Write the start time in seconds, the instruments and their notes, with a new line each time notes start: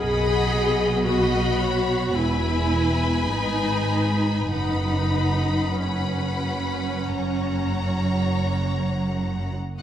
Already playing: double bass section B1, cello section B2, viola section G#4, violin section D#5 F#5 B5
1.05 viola section F#4, violin section D#5 F#5 B5
1.59 violin section C#5
2.12 double bass section E1, cello section E2, viola section E4, violin section B4 G#5 B5
3.27 double bass section G#1, cello section G#2, viola section D#4
4.51 double bass section F#1, cello section F#2, viola section D#4, violin section B4 F#5 B5
5.83 viola section C#4, violin section B4 F#5 B5
7.14 double bass section F#1, cello section F#2, violin section C#5 F#5 A#5